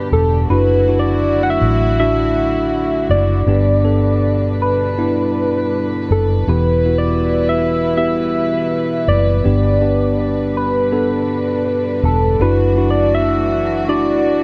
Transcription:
Already playing: B2 D3 G3 B3 D4 G4
0.12 E1 A4
0.49 F#1 D3 F#3 A3 D4 E4 F#4 B4
0.88 D4 E4 F#4
0.99 D5
1.43 F#5
1.50 E5
1.61 A1
2.00 D4 E4 F#4 E5
3.09 F#1 D5
3.46 G1 G2 B2 G3 B3 D4 G4 B4
3.84 B3 D4 A4
4.62 B4
4.98 B3 D4 E4
6.10 F#1 A4
6.47 E1 E3 G3 B3 E4 G4 B4
6.85 B3 E4 F#4
6.98 D5
7.49 E5
7.97 B3 E4 G4 E5
9.08 F#1 D5
9.44 G1 G2 D3 B3 D4 G4
9.82 B3 D4 G4
10.57 B4
10.92 B3 D4 A4
12.03 E1 A4
12.39 F#1 E3 F#3 A3 D4 E4 F#4 B4
12.77 D4 E4 F#4
12.90 D5
13.15 E5
13.89 D4 E4 F#4 D5

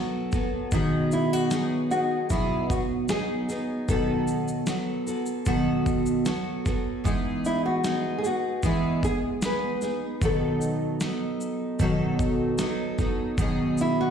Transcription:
Already playing: F#3 B3 F#4 A4
0.31 F#3 B3 F#4 A4, kick, snare, shaker
0.72 B2 D#3 F#3 B3 D#4 G#4, kick, shaker
1.12 E4, shaker
1.33 F#4
1.51 F#3 B3 D#4 G#4, snare, shaker
1.90 F#3 B3 D#4 F#4 G#4, shaker
2.30 B2 F#3 B3 E4 G#4, kick, shaker
2.70 F#4, kick, shaker
3.09 F#3 B3 D#4 G#4, snare, shaker
3.49 F#3 B3 D#4 G#4, snare, shaker
3.88 B2 D#3 F#3 B3 F#4 A4, kick, shaker
4.27 shaker
4.48 shaker
4.67 F#3 B3 F#4 A4, snare, shaker
5.06 F#3 B3 F#4 A4, shaker
5.26 shaker
5.46 B2 D#3 F#3 B3 F#4 A4, kick, shaker
5.86 kick, shaker
6.06 shaker
6.25 F#3 B3 F#4 A4, snare, shaker
6.65 F#3 B3 F#4 A4, kick, snare, shaker
7.04 E3 G#3 B3 D#4 G#4, kick, shaker
7.45 E4, shaker
7.66 F#4
7.84 G#3 B3 D#4 G#4, snare, shaker
8.18 G#4
8.23 B3 D#4 F#4 G#4, shaker
8.62 E3 G#3 B3 E4 G#4, kick, shaker
9.03 G#4, kick, shaker
9.42 G#3 B3 D#4 G#4 B4, snare, shaker
9.82 B3 D#4 G#4, snare, shaker
10.21 B2 D#3 F#3 B3 D#4 A4, kick, shaker
10.61 shaker
11.00 F#3 B3 D#4 A4, snare, shaker
11.41 shaker
11.79 B2 D#3 F#3 B3 D#4 A4, kick, shaker
12.19 kick, shaker
12.58 F#3 B3 D#4 A4, snare, shaker
12.98 F#3 B3 D#4 A4, kick, snare, shaker
13.38 B2 D#3 F#3 B3 D#4 G#4, kick, shaker
13.78 E4, shaker
14.01 F#4

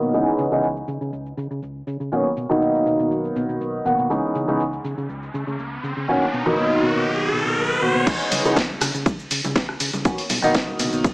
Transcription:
Already playing: D#3 F#3 A#3 B3 D#4
0.02 B2, shaker
0.13 C#2 E3 G#3 B3 C#4 D#4, shaker
0.38 C#3, shaker
0.51 C#3 E3 G#3 B3 C#4 D#4, shaker
0.63 C#2, shaker
0.76 shaker
0.88 C#3, shaker
1.01 C#3, shaker
1.13 C#2, shaker
1.26 shaker
1.37 C#3, shaker
1.51 C#3, shaker
1.62 C#2, shaker
1.87 C#3, shaker
2.00 C#3, shaker
2.12 B1 D#3 F#3 A#3 B3 C#4, shaker
2.37 B2, shaker
2.49 B2 D#3 F#3 A#3 B3 D#4, shaker
2.61 B1, shaker
2.75 shaker
2.86 B2, shaker
2.99 B2, shaker
3.11 B1, shaker
3.25 shaker
3.36 B2, shaker
3.49 B2, shaker
3.61 B1, shaker
3.85 B2 D#3 F#3 A#3 B3 F#4, shaker
3.98 B2, shaker
4.10 C#2 E3 G#3 B3 C#4 D#4, riser, shaker
4.35 C#3, shaker
4.48 C#3 E3 G#3 B3 C#4 D#4, shaker
4.59 C#2, shaker
4.73 shaker
4.84 C#3, shaker
4.98 C#3, shaker
5.09 C#2, shaker
5.23 shaker
5.34 C#3, shaker
5.47 C#3, shaker
5.59 C#2, shaker
5.83 C#3, shaker
5.97 C#3, shaker
6.08 B1 D#3 F#3 A#3 B3 C#4, shaker
6.22 shaker
6.33 B2, shaker
6.46 B2 D#3 F#3 A#3 B3 D#4, shaker
6.58 B1, shaker
6.71 shaker
6.83 B2, shaker
6.96 B2, shaker
7.07 B1, shaker
7.33 B2, shaker
7.46 B2, shaker
7.57 B1, shaker
7.71 shaker
7.82 B2 D#3 F#3 A#3 B3 F#4, shaker
7.95 B2
8.06 E3 G#3 B3 C#4 D#4, kick, crash, ride, tambourine, shaker
8.20 shaker
8.31 C#3, open hi-hat, ride, tambourine, high conga, shaker
8.45 C#3 E3 G#3 B3 C#4 D#4, tambourine, shaker
8.56 C#2, kick, snare, ride, tambourine, shaker
8.70 high conga
8.81 C#3, cross-stick, open hi-hat, ride, tambourine, low conga, shaker
8.94 C#3, tambourine, shaker
9.06 C#2, kick, ride, tambourine, high conga, shaker
9.19 shaker
9.31 C#3, open hi-hat, ride, tambourine, shaker
9.44 C#3, tambourine, high conga, low conga, shaker
9.56 C#2, kick, snare, ride, shaker
9.69 cross-stick
9.80 C#3, open hi-hat, ride, tambourine, shaker
9.93 C#3, tambourine, high conga, shaker
10.05 B1 D#3 F#3 A#3 B3 C#4, kick, ride, tambourine, shaker
10.18 open hi-hat, shaker
10.29 B2, open hi-hat, ride, tambourine, high conga, shaker
10.42 B2 D#3 F#3 A#3 B3 D#4, tambourine, shaker
10.55 B1, kick, snare, ride, shaker
10.68 high conga
10.79 B2, open hi-hat, ride, tambourine, low conga, shaker
10.93 B2, tambourine, shaker
11.04 B1, kick, ride, tambourine, high conga, shaker

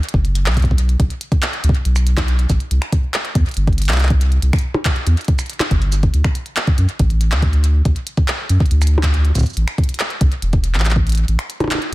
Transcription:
0.03 closed hi-hat
0.09 closed hi-hat
0.14 F#1, kick
0.25 closed hi-hat
0.35 closed hi-hat
0.46 B1, clap, closed hi-hat
0.49 closed hi-hat
0.52 closed hi-hat
0.54 kick, closed hi-hat
0.57 closed hi-hat
0.60 closed hi-hat
0.62 kick, closed hi-hat
0.65 closed hi-hat
0.71 kick
0.78 closed hi-hat
0.89 closed hi-hat
1.00 B1, kick, closed hi-hat
1.10 closed hi-hat
1.21 closed hi-hat
1.32 kick, closed hi-hat
1.43 clap, closed hi-hat
1.53 closed hi-hat
1.64 D2, closed hi-hat
1.69 kick
1.75 closed hi-hat
1.85 B1, closed hi-hat
1.96 finger snap, closed hi-hat, shaker
2.07 closed hi-hat
2.17 kick, clap, closed hi-hat, percussion blips
2.28 closed hi-hat
2.39 closed hi-hat
2.50 A1, kick, closed hi-hat, shaker
2.60 closed hi-hat
2.71 C2, closed hi-hat
2.82 finger snap, closed hi-hat
2.92 kick, closed hi-hat
3.14 clap, closed hi-hat
3.25 closed hi-hat
3.35 E2, kick, closed hi-hat
3.46 closed hi-hat
3.49 closed hi-hat
3.51 closed hi-hat
3.54 G1, closed hi-hat
3.57 closed hi-hat
3.67 kick, closed hi-hat
3.73 closed hi-hat
3.78 closed hi-hat
3.82 closed hi-hat
3.84 closed hi-hat
3.85 clap, closed hi-hat
3.89 C2, clap, closed hi-hat
3.96 clap, closed hi-hat
4.00 clap, closed hi-hat
4.03 clap
4.07 kick, clap, closed hi-hat
4.21 closed hi-hat
4.32 closed hi-hat
4.42 C2, closed hi-hat
4.53 finger snap, kick, closed hi-hat
4.56 closed hi-hat
4.59 closed hi-hat
4.61 closed hi-hat
4.74 percussion blips
4.85 kick, clap, closed hi-hat
4.96 closed hi-hat
5.07 E2, closed hi-hat
5.17 closed hi-hat
5.21 closed hi-hat
5.25 closed hi-hat
5.28 kick, closed hi-hat
5.39 finger snap, closed hi-hat, shaker
5.46 closed hi-hat
5.50 closed hi-hat
5.53 closed hi-hat
5.60 clap, closed hi-hat, percussion blips
5.71 G1, kick, closed hi-hat
5.82 closed hi-hat
5.92 closed hi-hat, shaker
6.03 kick, closed hi-hat
6.14 D2, closed hi-hat
6.24 finger snap, kick, closed hi-hat
6.35 closed hi-hat
6.46 closed hi-hat
6.57 clap, closed hi-hat
6.67 kick, closed hi-hat
6.78 F#2, closed hi-hat
6.89 closed hi-hat
6.99 A1, kick, closed hi-hat
7.10 closed hi-hat
7.21 closed hi-hat
7.32 D2, clap, closed hi-hat
7.42 kick, closed hi-hat
7.53 closed hi-hat
7.64 closed hi-hat
7.85 D2, kick, closed hi-hat
7.96 closed hi-hat
8.07 closed hi-hat
8.17 kick, closed hi-hat
8.28 clap, closed hi-hat
8.49 F#2, closed hi-hat
8.60 kick
8.66 closed hi-hat
8.71 D2, closed hi-hat
8.82 finger snap, closed hi-hat, shaker
8.87 closed hi-hat
8.98 percussion blips
9.03 kick, clap, closed hi-hat
9.14 closed hi-hat
9.25 closed hi-hat
9.35 C2, kick, closed hi-hat, shaker
9.38 kick, shaker
9.41 kick
9.43 kick, closed hi-hat, shaker
9.50 shaker
9.53 A1, closed hi-hat, shaker
9.68 finger snap, closed hi-hat
9.78 kick, closed hi-hat
9.84 closed hi-hat
9.89 closed hi-hat
9.94 closed hi-hat
10.00 clap, closed hi-hat
10.10 closed hi-hat
10.21 C2, kick, closed hi-hat
10.32 closed hi-hat
10.42 E1, closed hi-hat
10.53 kick, closed hi-hat
10.64 closed hi-hat
10.74 A1, clap, closed hi-hat
10.80 clap
10.85 clap, closed hi-hat
10.91 clap
10.96 kick
11.07 closed hi-hat
11.09 closed hi-hat
11.12 closed hi-hat
11.15 closed hi-hat
11.18 closed hi-hat
11.28 A1, closed hi-hat
11.39 finger snap, closed hi-hat
11.50 closed hi-hat
11.60 closed hi-hat, percussion blips
11.64 percussion blips
11.68 clap, closed hi-hat, percussion blips
11.71 percussion blips
11.75 percussion blips
11.78 closed hi-hat, percussion blips

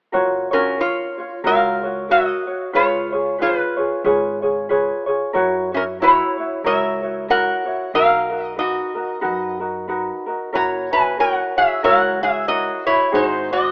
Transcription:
0.12 F#1 F4 F#4 A#4 C#5
0.51 C#4 F4 F#4 A#4 C#5
0.78 F4 A#4 C#5
1.18 F4 C#5
1.44 C#2 F4 F#4 A#4 C#5 F5
1.83 F4 F#4 C#5
2.09 F#4 A#4 C#5 D#5
2.47 F#4 C#5
2.73 C#2 F4 G#4 B4 C#5
3.12 F4 G#4 C#5
3.38 F4 G#4 B4 C#5
3.42 B4
3.77 F4 G#4 C#5
4.04 G#1 F4 G#4 B4 C#5
4.42 F4 G#4 C#5
4.69 F4 G#4 B4 C#5
5.06 F4 G#4 C#5
5.33 F#2 E4 F#4 A#4 C#5
5.72 C#4 E4 F#4 C#5
5.77 A#4
6.00 E4 F#4 A#4 C#5
6.37 E4 F#4 C#5
6.64 C#2 E4 F#4 A#4 C#5 E5
7.02 E4 F#4 C#5
7.29 E4 F#4 A#4 C#5 F#5
7.65 E4 F#4 C#5
7.94 B1 D#4 F#4 A#4 F5
8.29 D#4 F#4 A#4
8.45 D#5
8.56 D#4 F#4 A#4 B4 D#5
8.95 D#4 F#4 A#4
9.21 F#2 D#4 F#4 A#4 B4
9.59 D#4 F#4 A#4
9.88 D#4 F#4 A#4 B4
10.26 D#4 F#4 A#4
10.53 F#1 E4 F#4 A#4 C#5 A#5
10.91 E4 F#4 B4 C#5 G#5
11.17 E4 F#4 A#4 C#5 F#5
11.56 E4 F#4 G#4 C#5 E5
11.83 C#2 E4 F#4 A#4 C#5 F#5
12.20 E4 F#4 G#4 C#5 E5
12.48 E4 F#4 A#4 C#5 D#5
12.86 E4 F#4 C#5
13.12 G#1 D#4 F#4 G#4 C5
13.51 D#4 F#4 C5 D#5

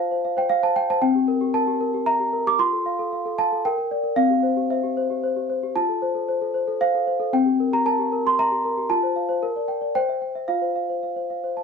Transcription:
Already playing: F4 C5 A5
0.00 F5
0.11 C5
0.25 F5
0.37 C5 G5
0.49 F5
0.63 C5 A5
0.76 F5 G5
0.90 C5 A5
1.02 C4 G5
1.15 G4
1.28 A#4
1.41 G4
1.54 A#4 A5
1.67 G4
1.80 A#4
1.94 G4
2.06 E5 A#5
2.20 G4
2.33 A#4
2.47 G4 D6
2.59 F4 C6
2.73 A4
2.86 F5
2.99 A4
3.13 F5
3.26 A4
3.38 F5 A5
3.52 A4
3.65 A#4 G5
3.78 A#4
3.91 D5
4.04 A#4
4.16 C4 F5
4.30 G4
4.43 C5
4.57 G4
4.70 C5 E5
4.83 G4
4.97 C5
5.10 G4
5.23 C5
5.36 G4
5.50 C5
5.63 G4
5.76 F4 A5
5.89 A4
6.02 C5
6.15 A4
6.28 C5
6.41 A4
6.54 C5
6.67 A4
6.81 C5 F5
6.94 A4
7.07 C5
7.20 A4
7.33 C4 G5
7.46 G4
7.60 A#4
7.73 G4 A#5
7.86 A#4 A5
7.99 G4
8.12 A#4
8.25 G4 C6
8.39 E5 A#5
8.52 G4
8.65 A#4
8.78 G4
8.90 F4 A5
9.03 C5
9.16 F5
9.29 C5
9.43 A#4
9.56 D5
9.68 G5
9.81 D5
9.95 C5 G5
10.09 E5
10.22 G5
10.35 E5
10.48 F4 F5
10.62 C5
10.76 F5
10.89 C5
11.03 F5
11.16 C5
11.30 F5
11.44 C5
11.57 A5

